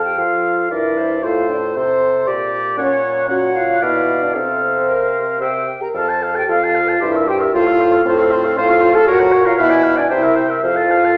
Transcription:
Already playing: F2 C5 F5
0.04 G4 G5
0.18 F3 F4 A4 F5
0.71 G2 E4 A#4 D5 E5
0.98 C5
1.22 A2 F4 A4 C5 F5
1.49 D4 D5
1.76 C3 C4 A4 C5
2.27 A#2 G4 D5
2.78 A#2 C#4 C#5 F#5
3.29 F#4 C#5 F#5
3.56 F4 F5
3.82 B2 E4 D5 E5 F5
4.22 D4 D5
4.34 C3 C4 A4 C5 F5
4.88 A#4
5.40 C3 G4 C5 E5 G5
5.82 A#4 A#5
5.94 F2 A4 F5 A5
6.08 C5 A5
6.21 A4 F5
6.35 G4 C5 G5 A5
6.48 F2 F4 A4 F5
6.60 C5 A5
6.74 A4 F5
6.87 C5 A5
7.00 G2 E4 G4 C5 E5
7.12 A#4 E5
7.26 G4 C5 G5
7.39 A#4 E5
7.53 A2 F4 C5 F5
7.66 A4 F5
7.79 F4 C5
7.92 A4 F5
8.05 A2 C4 F4 C5
8.18 A4 F5
8.32 F4 C5
8.45 A4 F5
8.57 A2 F4 C5 F5
8.70 A4 F5
8.81 F4 C5
8.93 A4 F5 A5
9.07 A#2 F#4 A#4 C#5 F#5
9.19 A#4 C#5
9.32 A#4 C#5
9.45 F4 A#4 C#5 F5
9.57 B2 E4 B4 E5 F5
9.70 D5 G#5
9.82 B4 F5
9.96 D4 D5 G#5
10.10 C3 E4 C5 E5 G5
10.23 A#4 E5
10.36 C5 G5
10.49 A#4 E5
10.63 F2 F4 C5 F5
10.76 A4 A5
10.90 C5 F5
11.05 A4 A5

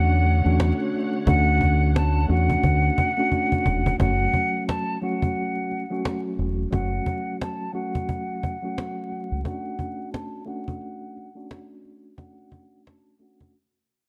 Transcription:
Already playing: E2 D3 A3 C#4 D4 F#4 C#5 F#5
0.26 cajon slap
0.44 E2 A3 C#4 D4 F#4
0.60 cajon slap
0.94 cajon slap
1.26 D2 A3 C#4 D4 F#4 F#5, cajon bass
1.61 cajon bass
1.95 A5, cajon slap
2.28 E2 A3 C#4 D4 F#4 F#5, cajon slap
2.50 cajon bass
2.63 D2, cajon bass, cajon slap
2.98 cajon bass
3.17 A3 C#4 D4 F#4
3.32 cajon bass, cajon slap
3.52 cajon bass
3.66 E1, cajon bass
3.86 cajon bass
3.98 F#1 F#3 A3 C#4 F#4 F#5, cajon bass
4.34 cajon bass
4.68 A5, cajon slap
5.01 F#3 A3 C#4 F#4 F#5, cajon slap
5.22 cajon bass
5.36 cajon slap
5.71 cajon slap
5.90 F#3 A3 C#4 F#4
6.05 cajon slap
6.39 E1, cajon slap
6.71 F#1 F#3 A3 C#4 F#4 F#5, cajon bass
7.06 cajon bass
7.41 A5, cajon slap
7.73 F#3 A3 C#4 F#4 F#5, cajon slap
7.95 cajon bass
8.09 cajon bass, cajon slap
8.43 cajon bass
8.62 F#3 A3 C#4 F#4
8.78 cajon slap
9.12 cajon slap
9.32 C#2
9.44 A3 C#4 D4 F#4 F#5, cajon bass
9.79 cajon bass
10.13 A5, cajon slap
10.45 A3 C#4 D4 F#4 F#5, cajon slap
10.68 cajon bass
10.81 cajon slap
11.17 cajon slap
11.35 A3 C#4 D4 F#4
11.51 cajon slap
11.84 cajon slap
12.17 A3 C#4 D4 F#4 F#5, cajon bass
12.52 cajon bass
12.86 A5, cajon slap
13.19 A3 C#4 D4 F#4 F#5, cajon slap
13.41 cajon bass

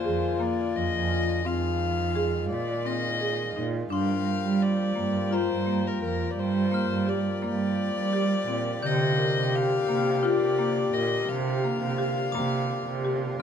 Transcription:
Already playing: D3 A#3 F4 G#4 C5
0.04 F2 G#4
0.40 A#3 D5
0.76 F2 D#5
0.93 F2
1.09 F4
1.44 F2 D#3 G#3 C4 F4 F5
2.16 G#4
2.50 A#2 D5
2.85 C4 D#5
3.21 G#4
3.56 A#2 D#4
3.90 G2 A#3 D4 F4 F5 C6
3.95 F3 G4
4.25 A#4
4.44 G3
4.63 D5
4.95 G2 A#3
5.31 F4 C5 A#5
5.50 G2
5.66 A#3
5.88 A#4
6.02 F2 A#4
6.31 D5
6.37 G2 C5
6.72 A#3 F6
6.90 G2
7.07 G4 D5
7.42 G2 A#3 D5
7.95 G3
8.13 G4
8.47 A#2 C4
8.82 C3 D3 F4 G4 G6
8.87 D#5
9.18 A#4
9.36 C3
9.56 F5
9.87 C3 A#3 F6
10.23 F4 D5
10.41 C3
10.59 A#3
10.93 A#2 A#4 D#5
11.28 C3 F5
11.64 A#3
11.81 C3
11.98 G4
12.32 C3 A#3 D6
12.87 C3
13.05 G4

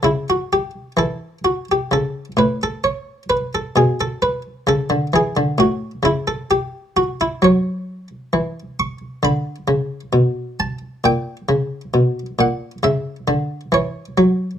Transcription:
0.03 C#3 E4
0.30 F#4
0.53 G4
0.97 E3 A4
1.45 F#4
1.71 G4
1.91 C#3 A4
2.37 A2 B4
2.63 A4
2.84 C#5
3.30 B4
3.55 A4
3.76 B2 G#4
4.01 A4
4.22 B4
4.67 C#3 A4
4.90 D3
5.13 E3 G#4
5.37 D3
5.58 A2 F#4
6.03 C#3 E4
6.28 A4
6.51 G4
6.97 F#4
7.21 E4
7.42 F#3 C#5
8.33 E3
8.80 C#6
9.23 D3 B5
9.68 C#3
10.13 B2
10.60 A5
11.04 A#2 G5
11.49 C#3
11.94 B2
12.39 A#2 F#5
12.83 C#3 E5
13.28 D3
13.72 E3 C#5
14.18 F#3

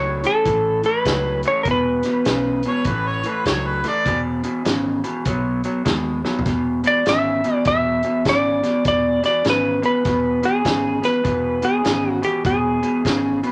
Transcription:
Already playing: C#2 A2 F#3 C#5
0.24 A2 E3 A4, closed hi-hat
0.45 A1 A2 E3, kick, closed hi-hat
0.83 A2 E3 B4, closed hi-hat
1.05 C#2 A2 F#3, kick, snare, closed hi-hat
1.43 A2 E3, closed hi-hat
1.48 C#5
1.63 E1 E2 A#4, kick, closed hi-hat
1.67 B2 B4
2.03 E2 B2, snare, closed hi-hat
2.25 B1 E2 C#3, snare, closed hi-hat
2.63 E2 B2, closed hi-hat
2.68 C#5
2.84 A1 A2 E3 B4, kick, closed hi-hat
3.07 C#5
3.23 A2 E3, closed hi-hat
3.28 B4
3.45 C#2 A2 F#3 C#5, kick, snare, closed hi-hat
3.67 B4
3.84 A2 E3, snare, closed hi-hat
3.88 D5
4.06 E1 E2 B2, kick, closed hi-hat
4.43 E2 B2, closed hi-hat
4.65 G#1 E2 C#3, snare, closed hi-hat
5.04 E2 B2, closed hi-hat
5.25 B1 B2 F#3, kick, closed hi-hat
5.64 B2 F#3, closed hi-hat
5.85 D#2 B2 G#3, kick, snare, closed hi-hat
6.25 B2 F#3, snare
6.39 floor tom
6.46 E1 E2 B2, kick, snare, closed hi-hat
6.84 E2 B2 D5, closed hi-hat
7.06 G#1 E2 C#3 E5, snare, closed hi-hat
7.44 E2 B2, closed hi-hat
7.55 D5
7.65 E1 E2 B2 E5, kick, snare, closed hi-hat
8.03 E2 B2, closed hi-hat
8.25 G#1 E2 C#3, kick, snare, closed hi-hat
8.29 D5
8.63 E2 B2, snare, closed hi-hat
8.85 E1 E2 B2 D5, kick, snare, closed hi-hat
9.23 E2 B2 D5, snare, closed hi-hat
9.45 G#1 E2 C#3, snare, closed hi-hat
9.50 B4
9.82 E2 B2 B4, closed hi-hat
10.05 E1 E2 B2, kick, snare, closed hi-hat
10.43 E2 B2 G#4, closed hi-hat
10.65 G#1 E2 C#3, kick, snare, closed hi-hat
11.02 E2 B2 B4, snare, closed hi-hat
11.24 E1 E2 B2, kick, closed hi-hat
11.62 E2 B2 G#4, closed hi-hat
11.84 G#1 E2 C#3, snare, closed hi-hat
12.12 F#4
12.22 E2 B2 G4, closed hi-hat
12.45 E1 E2 B2 G#4, kick, closed hi-hat
12.83 E2 B2, closed hi-hat
13.05 G#1 E2 C#3, kick, snare, closed hi-hat
13.43 E2 B2 B4, closed hi-hat

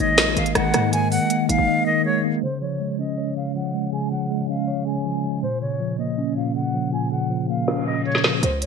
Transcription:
Already playing: D#3 G#3 A#3
0.00 G#1 D#4 D#5
0.18 A#1 D#5, snare, closed hi-hat
0.36 G#1 D#3 F5, closed hi-hat
0.46 closed hi-hat
0.55 G#1 G#3 F#5, cross-stick, closed hi-hat
0.74 G#2 A#3, cross-stick, closed hi-hat
0.93 D#3 G#5, closed hi-hat
1.11 G#3 F#5, open hi-hat
1.30 A#3, closed hi-hat
1.49 F#1 D#4 F5, closed hi-hat
1.58 G#1
1.68 D#5
1.86 D#3 D#5
2.05 G#3 C#5
2.24 A#3
2.43 C#3 C5, closed hi-hat
2.61 F3 C#5, closed hi-hat
2.80 G#3, closed hi-hat
2.99 C#4 D#5
3.18 C#5, closed hi-hat
3.36 C#3 F5
3.55 F3 F#5, closed hi-hat
3.74 G#3, closed hi-hat
3.93 C#3 G#5, closed hi-hat
4.11 F3 F#5, closed hi-hat
4.30 G#3, closed hi-hat
4.49 C#4 F5
4.68 C#5, closed hi-hat
4.87 C#3 G#5
5.05 F3, closed hi-hat
5.24 G#3, closed hi-hat
5.43 A#2 C5, closed hi-hat
5.61 C#3 C#5, closed hi-hat
5.80 F3, closed hi-hat
5.99 A#3 D#5
6.18 C#4, closed hi-hat
6.37 A#2 F5
6.55 C#3 F#5, closed hi-hat
6.74 F3, closed hi-hat
6.93 A#2 G#5, closed hi-hat
7.12 C#3 F#5, closed hi-hat
7.21 closed hi-hat
7.30 F3, closed hi-hat
7.49 A#3 F5
7.68 C#4, snare, closed hi-hat
7.86 A#2 D#5
8.05 C#3 C#5, closed hi-hat
8.12 snare, closed hi-hat
8.18 closed hi-hat
8.24 F3, snare, closed hi-hat
8.43 C#2 C5, closed hi-hat
8.62 C#5, closed hi-hat

